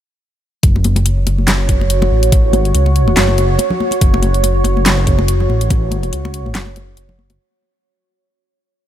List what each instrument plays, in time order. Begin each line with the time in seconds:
0.63 detuned saw bass F#1, ambient pad F#4 C#5, kick, closed hi-hat
0.76 muted conga
0.84 closed hi-hat, high conga
0.96 closed hi-hat, muted conga
1.06 closed hi-hat
1.27 detuned saw bass F#1, closed hi-hat, muted conga
1.38 high conga
1.47 snare, clap, closed hi-hat, muted conga
1.69 kick, closed hi-hat
1.81 muted conga
1.90 closed hi-hat
2.02 muted conga, low conga
2.11 detuned saw bass A1
2.23 closed hi-hat
2.32 kick, closed hi-hat, muted conga
2.53 detuned saw bass G#1, closed hi-hat, muted conga, high conga
2.65 closed hi-hat
2.75 detuned saw bass C#2, closed hi-hat
2.86 muted conga
2.96 closed hi-hat
3.08 muted conga, high conga
3.17 detuned saw bass F#1, snare, clap, closed hi-hat
3.28 high conga
3.38 closed hi-hat, muted conga
3.59 closed hi-hat, muted conga
3.70 low conga
3.80 high conga
3.91 closed hi-hat, muted conga
4.01 detuned saw bass F#1, kick, closed hi-hat
4.14 muted conga
4.22 closed hi-hat, high conga
4.34 closed hi-hat
4.43 closed hi-hat, muted conga
4.64 detuned saw bass F#1, closed hi-hat, muted conga
4.77 high conga
4.86 snare, clap, closed hi-hat
4.97 muted conga
5.07 kick, closed hi-hat
5.19 muted conga
5.28 closed hi-hat
5.40 low conga
5.49 detuned saw bass A1, muted conga
5.61 closed hi-hat
5.70 kick, closed hi-hat, muted conga
5.91 closed hi-hat, high conga
6.03 closed hi-hat, muted conga
6.13 detuned saw bass C#2, closed hi-hat
6.25 muted conga
6.34 closed hi-hat
6.46 high conga
6.55 detuned saw bass F#1, snare, clap, closed hi-hat, muted conga
6.66 high conga
6.76 closed hi-hat, muted conga
6.97 detuned saw bass F#1, closed hi-hat
7.09 muted conga, low conga
7.19 high conga
7.30 closed hi-hat, muted conga